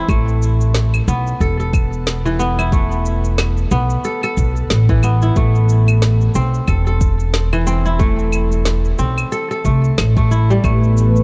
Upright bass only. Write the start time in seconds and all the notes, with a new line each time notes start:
0.08 A1
1.08 B1
1.40 E1
3.71 B1
4.37 B1
4.71 A1
5.36 A1
6.35 B1
6.68 E1
8.99 B1
9.65 C2
9.98 A1
10.64 A1